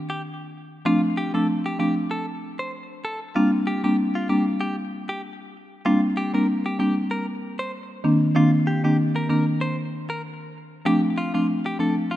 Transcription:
0.10 0.21 G4 medium
0.85 1.30 F3 medium
0.85 1.30 A3 medium
0.85 1.30 C4 medium
0.85 1.30 D4 loud
0.85 1.00 F4 loud
1.17 1.32 G4 medium
1.34 1.76 F3 medium
1.34 1.76 A3 medium
1.34 1.76 C4 medium
1.34 1.76 D4 medium
1.34 1.46 A4 medium
1.66 1.78 G4 medium
1.79 2.08 F3 medium
1.79 2.08 A3 medium
1.79 2.08 C4 medium
1.79 2.08 D4 medium
1.79 1.94 G4 medium
2.11 2.25 A4 medium
2.59 2.71 C5 medium
3.05 3.19 A4 medium
3.35 3.80 G3 medium
3.35 3.80 A#3 medium
3.35 3.80 C4 medium
3.35 3.80 D4 loud
3.35 3.50 F4 loud
3.67 3.82 G4 medium
3.84 4.26 G3 medium
3.84 4.26 A#3 medium
3.84 4.26 C4 medium
3.84 4.26 D4 medium
3.84 3.96 G4 medium
4.15 4.27 F4 medium
4.29 4.58 G3 medium
4.29 4.58 A#3 medium
4.29 4.58 C4 medium
4.29 4.58 D4 medium
4.29 4.44 G4 medium
4.61 4.75 G4 medium
5.09 5.21 G4 medium
5.85 6.30 G3 loud
5.85 6.30 A#3 medium
5.85 6.30 C4 medium
5.85 6.30 D4 loud
5.85 6.00 F4 loud
6.17 6.32 G4 medium
6.34 6.76 G3 medium
6.34 6.76 A#3 medium
6.34 6.76 C4 medium
6.34 6.76 D4 medium
6.34 6.46 A#4 medium
6.66 6.78 G4 medium
6.79 7.08 G3 medium
6.79 7.08 A#3 medium
6.79 7.08 C4 medium
6.79 7.08 D4 medium
6.79 6.94 G4 medium
7.11 7.25 A#4 medium
7.59 7.71 C5 medium
8.04 8.33 D#3 loud
8.04 8.33 A#3 medium
8.04 8.33 C4 medium
8.04 8.33 D4 loud
8.35 8.80 D#3 loud
8.35 8.80 A#3 medium
8.35 8.80 C4 medium
8.35 8.80 D4 loud
8.35 8.50 F4 loud
8.67 8.82 G4 medium
8.84 9.26 D#3 medium
8.84 9.26 A#3 medium
8.84 9.26 C4 medium
8.84 9.26 D4 medium
8.84 8.96 G4 medium
9.16 9.28 A#4 medium
9.29 9.58 D#3 medium
9.29 9.58 A#3 medium
9.29 9.58 C4 medium
9.29 9.58 D4 medium
9.29 9.44 A#4 medium
9.61 9.76 C5 medium
10.10 10.21 A#4 medium
10.85 11.30 F3 medium
10.85 11.30 A3 medium
10.85 11.30 C4 medium
10.85 11.30 D4 loud
10.85 11.01 G4 loud
11.18 11.32 F4 medium
11.34 11.76 F3 medium
11.34 11.76 A3 medium
11.34 11.76 C4 medium
11.34 11.76 D4 medium
11.34 11.46 F4 medium
11.66 11.78 G4 medium
11.79 12.08 F3 medium
11.79 12.08 A3 medium
11.79 12.08 C4 medium
11.79 12.08 D4 medium
11.79 11.94 A4 medium
12.11 12.16 F4 medium

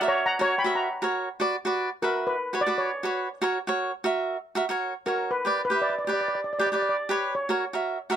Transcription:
0.01 0.24 F#4 medium
0.01 0.24 A#4 medium
0.01 0.25 E5 medium
0.08 0.26 C#5 loud
0.08 0.24 A#5 medium
0.26 0.42 F#5 medium
0.26 0.40 A#5 loud
0.39 0.54 F#4 medium
0.39 0.54 A#4 medium
0.39 0.55 C#5 medium
0.39 0.59 C#5 loud
0.39 0.58 A#5 medium
0.58 0.75 G5 medium
0.58 0.75 B5 medium
0.64 0.87 F#4 medium
0.64 0.88 A#4 medium
0.64 0.88 E5 medium
0.75 1.12 F#5 medium
0.75 1.12 A#5 medium
1.02 1.27 F#4 medium
1.02 1.27 A#4 medium
1.02 1.28 C#5 medium
1.40 1.55 F#4 medium
1.40 1.55 B4 medium
1.40 1.55 D5 medium
1.65 1.88 F#4 medium
1.65 1.89 B4 medium
1.65 1.89 D5 medium
2.02 2.33 F#4 medium
2.02 2.26 A#4 medium
2.02 2.34 B4 medium
2.02 2.34 E5 medium
2.27 2.62 B4 medium
2.53 2.61 F#4 medium
2.53 2.62 B4 medium
2.53 2.62 C#5 medium
2.61 2.79 D5 loud
2.66 2.89 F#4 medium
2.66 2.90 B4 medium
2.66 2.90 D5 medium
2.78 4.01 C#5 medium
3.03 3.27 F#4 medium
3.03 3.27 B4 medium
3.03 3.28 C#5 medium
3.42 3.57 F#4 medium
3.42 3.57 A#4 medium
3.42 3.58 C#5 medium
3.67 3.91 F#4 medium
3.67 3.91 A#4 medium
3.67 3.91 C#5 medium
4.04 4.36 F#4 medium
4.04 4.36 A#4 medium
4.04 4.36 E5 loud
4.55 4.64 F#4 medium
4.55 4.64 A#4 medium
4.55 4.65 E5 medium
4.69 4.92 F#4 medium
4.69 4.92 A#4 medium
4.69 4.93 C#5 medium
5.06 5.29 F#4 medium
5.06 5.33 A#4 medium
5.06 5.30 A#4 medium
5.06 5.31 C#5 medium
5.31 5.64 B4 medium
5.45 5.60 G4 medium
5.45 5.60 B4 medium
5.45 5.61 D5 medium
5.65 5.83 B4 medium
5.70 5.93 G4 medium
5.70 5.94 B4 medium
5.70 5.94 E5 medium
5.82 5.88 D5 medium
5.90 5.97 D5 medium
5.99 6.04 D5 medium
6.05 6.39 G4 medium
6.05 6.39 B4 medium
6.05 6.12 D5 medium
6.09 6.40 D5 medium
6.09 6.20 D5 medium
6.21 6.27 D5 medium
6.28 6.34 D5 medium
6.35 6.43 D5 medium
6.44 6.51 D5 medium
6.53 6.58 D5 medium
6.59 6.67 G4 medium
6.59 6.68 B4 medium
6.59 6.65 D5 medium
6.59 6.68 D5 medium
6.67 6.74 D5 medium
6.72 6.95 G4 medium
6.72 6.95 B4 medium
6.72 6.96 D5 medium
6.72 6.81 D5 medium
6.82 6.88 D5 medium
6.89 6.97 D5 medium
7.09 7.32 G4 medium
7.09 7.33 B4 medium
7.09 7.34 C#5 medium
7.35 8.16 C#5 medium
7.49 7.63 F#4 medium
7.49 7.64 A#4 medium
7.49 7.64 C#5 medium
7.73 7.96 F#4 medium
7.73 7.97 A#4 medium
7.73 7.97 E5 medium
8.10 8.16 F#4 medium
8.10 8.16 A#4 medium
8.10 8.16 E5 medium

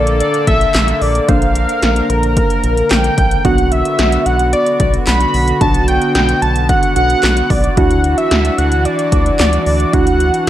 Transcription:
0.00 0.22 A#1 loud
0.00 3.41 D3 medium
0.00 1.25 A#3 medium
0.00 3.41 A#3 medium
0.00 1.25 D4 medium
0.00 1.25 A4 medium
0.00 1.26 A4 medium
0.00 0.20 D5 loud
0.07 closed hi-hat medium
0.20 0.46 D5 loud
0.20 closed hi-hat medium
0.34 closed hi-hat medium
0.47 0.66 A#1 loud
0.47 1.03 E5 loud
0.47 kick loud
0.47 closed hi-hat medium
0.61 closed hi-hat medium
0.74 0.93 A#1 loud
0.74 snare loud
0.74 clap medium
0.74 closed hi-hat medium
0.88 closed hi-hat medium
1.01 1.20 A#1 loud
1.01 1.30 D5 loud
1.01 open hi-hat medium
1.15 closed hi-hat medium
1.29 1.66 A#1 loud
1.29 3.41 A#3 medium
1.29 3.41 D4 medium
1.29 3.43 A#4 medium
1.29 3.41 C5 medium
1.29 2.11 F5 loud
1.29 kick loud
1.29 closed hi-hat medium
1.42 closed hi-hat medium
1.55 closed hi-hat medium
1.69 closed hi-hat medium
1.83 2.01 A#1 medium
1.83 snare loud
1.83 closed hi-hat medium
1.96 closed hi-hat medium
2.10 2.38 A#1 medium
2.10 2.90 A#4 loud
2.10 closed hi-hat medium
2.23 closed hi-hat medium
2.37 kick loud
2.37 closed hi-hat medium
2.50 closed hi-hat medium
2.64 2.83 A#1 loud
2.64 closed hi-hat medium
2.77 closed hi-hat medium
2.91 3.10 A#1 loud
2.91 3.46 G5 loud
2.91 snare loud
2.91 clap medium
2.91 closed hi-hat medium
3.04 closed hi-hat medium
3.18 3.37 A#1 loud
3.18 kick loud
3.18 closed hi-hat medium
3.31 closed hi-hat medium
3.45 3.83 B1 loud
3.45 7.73 D3 medium
3.45 5.57 B3 medium
3.45 7.73 B3 medium
3.45 5.57 D4 medium
3.45 5.57 F#4 medium
3.45 7.73 F#4 medium
3.45 3.73 F#5 loud
3.45 kick loud
3.45 closed hi-hat medium
3.58 closed hi-hat medium
3.72 4.27 E5 loud
3.72 closed hi-hat medium
3.85 closed hi-hat medium
3.99 4.18 B1 loud
3.99 snare loud
3.99 closed hi-hat medium
4.12 closed hi-hat medium
4.26 4.54 B1 medium
4.26 4.52 F#5 loud
4.26 closed hi-hat medium
4.39 closed hi-hat medium
4.53 4.78 D5 loud
4.53 closed hi-hat medium
4.66 closed hi-hat medium
4.80 4.99 B1 loud
4.80 4.92 D5 loud
4.80 kick loud
4.80 closed hi-hat medium
4.94 closed hi-hat medium
5.07 5.26 B1 loud
5.07 5.57 B5 loud
5.07 snare loud
5.07 clap medium
5.07 closed hi-hat medium
5.21 closed hi-hat medium
5.34 5.53 B1 loud
5.34 open hi-hat medium
5.48 closed hi-hat medium
5.61 5.99 B1 loud
5.61 6.93 B3 medium
5.61 6.93 D4 medium
5.61 6.93 F#4 medium
5.61 5.86 A5 loud
5.61 kick loud
5.61 closed hi-hat medium
5.74 closed hi-hat medium
5.88 6.13 G5 loud
5.88 closed hi-hat medium
6.02 closed hi-hat medium
6.15 6.34 B1 loud
6.15 6.40 G5 loud
6.15 snare loud
6.15 closed hi-hat medium
6.29 closed hi-hat medium
6.42 6.70 B1 loud
6.42 6.67 A5 loud
6.42 closed hi-hat medium
6.56 closed hi-hat medium
6.69 6.94 F#5 loud
6.69 kick loud
6.69 closed hi-hat medium
6.83 closed hi-hat medium
6.96 7.15 B1 loud
6.96 7.77 B3 soft
6.96 7.76 D4 soft
6.96 7.76 F#4 medium
6.96 7.52 F#5 loud
6.96 closed hi-hat medium
7.10 closed hi-hat medium
7.23 7.42 B1 loud
7.23 snare loud
7.23 clap medium
7.23 closed hi-hat medium
7.37 closed hi-hat medium
7.50 7.69 B1 loud
7.50 7.79 D5 loud
7.50 kick loud
7.50 open hi-hat medium
7.64 closed hi-hat medium
7.77 8.15 D2 loud
7.77 10.50 E3 medium
7.77 10.50 D4 medium
7.77 9.89 D4 medium
7.77 9.89 E4 medium
7.77 10.50 F#4 medium
7.77 9.89 F#4 medium
7.77 8.17 F#5 loud
7.77 kick loud
7.77 closed hi-hat medium
7.91 closed hi-hat medium
8.04 closed hi-hat medium
8.18 8.60 E5 loud
8.18 closed hi-hat medium
8.31 8.50 D2 loud
8.31 snare loud
8.31 closed hi-hat medium
8.45 closed hi-hat medium
8.58 8.87 D2 loud
8.58 8.87 F#5 loud
8.58 closed hi-hat medium
8.72 closed hi-hat medium
8.85 9.39 D5 loud
8.85 closed hi-hat medium
8.99 closed hi-hat medium
9.12 9.31 D2 loud
9.12 kick loud
9.12 closed hi-hat medium
9.26 closed hi-hat medium
9.39 9.58 D2 loud
9.39 9.64 D5 loud
9.39 snare loud
9.39 clap medium
9.39 closed hi-hat medium
9.53 closed hi-hat medium
9.66 9.85 D2 loud
9.66 9.95 D5 medium
9.66 open hi-hat medium
9.80 closed hi-hat medium
9.93 10.31 D2 loud
9.93 10.50 D4 medium
9.93 10.50 E4 medium
9.93 10.50 F#4 medium
9.93 10.49 F#5 loud
9.93 kick loud
9.93 closed hi-hat medium
10.07 closed hi-hat medium
10.20 closed hi-hat medium
10.34 closed hi-hat medium

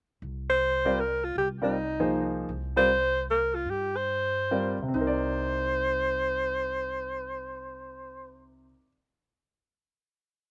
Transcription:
0.22 1.32 C2 medium
0.49 1.01 C5 medium
0.85 0.97 G3 medium
0.85 0.97 C4 medium
0.85 0.97 F4 medium
0.85 0.97 A#4 medium
0.85 0.97 D5 medium
1.00 1.26 A#4 medium
1.24 1.37 F4 medium
1.35 2.46 C2 medium
1.35 1.49 G4 medium
1.62 1.73 G3 medium
1.62 1.74 C4 medium
1.62 2.35 D#4 medium
1.62 1.73 F4 medium
1.62 1.74 A#4 medium
1.62 1.74 D5 medium
2.00 2.48 F3 medium
2.00 2.48 A#3 medium
2.00 2.48 D#4 medium
2.00 2.48 G#4 medium
2.00 2.48 C5 medium
2.49 3.62 C2 medium
2.76 2.88 G3 medium
2.76 2.88 C4 medium
2.76 2.88 F4 medium
2.76 2.88 A#4 medium
2.76 3.25 C5 loud
2.76 2.88 D5 medium
3.31 3.56 A#4 medium
3.55 3.72 F4 medium
3.66 4.73 G2 medium
3.70 3.98 G4 medium
3.96 4.79 C5 medium
4.51 4.76 G3 medium
4.51 4.76 C4 soft
4.51 4.76 F4 soft
4.51 4.76 A#4 medium
4.51 4.76 D5 medium
4.78 4.92 D2 medium
4.82 8.64 C3 medium
4.88 8.70 C4 medium
4.94 8.72 C2 medium
4.94 8.77 D#4 medium
4.94 8.39 C5 medium
5.01 8.83 A#4 medium
5.07 8.89 D5 medium

